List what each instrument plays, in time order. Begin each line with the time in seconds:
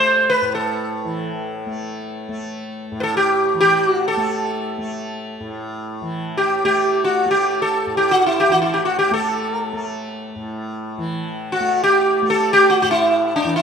Already playing: tanpura A2 E3 A3, sitar C5
0.30 sitar B4
0.42 tanpura A2
0.55 sitar A4
1.05 tanpura E3
1.66 tanpura A3
2.29 tanpura A3
2.92 tanpura A2
3.00 sitar A4 B4
3.17 sitar G4
3.54 tanpura E3
3.60 sitar G4
3.88 sitar F#4
4.08 sitar A4
4.17 tanpura A3
4.78 tanpura A3
5.40 tanpura A2
6.02 tanpura E3
6.37 sitar G4
6.64 tanpura A3, sitar G4
7.04 sitar F#4
7.25 tanpura A3
7.31 sitar G4
7.62 sitar A4
7.86 tanpura A2
7.97 sitar G4
8.11 sitar F#4
8.26 sitar E4
8.40 sitar G4
8.49 tanpura E3, sitar F#4
8.62 sitar E4
8.74 sitar G4
8.85 sitar F#4
8.99 sitar G4
9.11 tanpura A3, sitar A4
9.73 tanpura A3
10.36 tanpura A2
10.98 tanpura E3
11.52 sitar F#4
11.60 tanpura A3
11.84 sitar G4
12.22 tanpura A3
12.30 sitar A4
12.53 sitar G4
12.70 sitar F#4
12.82 tanpura A2, sitar F#4
12.91 sitar E4
13.36 sitar D4
13.44 tanpura E3
13.56 sitar E4